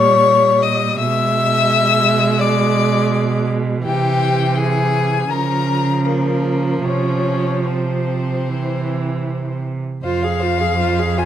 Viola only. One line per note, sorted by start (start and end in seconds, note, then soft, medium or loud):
0.00 1.02 G3 medium
1.00 3.84 G#3 medium
3.84 5.32 E3 medium
5.31 8.49 F3 medium
8.48 9.85 E3 medium
10.04 10.25 F4 medium
10.24 10.44 G#4 medium
10.43 10.62 F4 medium
10.61 10.79 G#4 medium
10.80 11.01 F4 medium
10.99 11.19 G#4 medium
11.18 11.25 F4 medium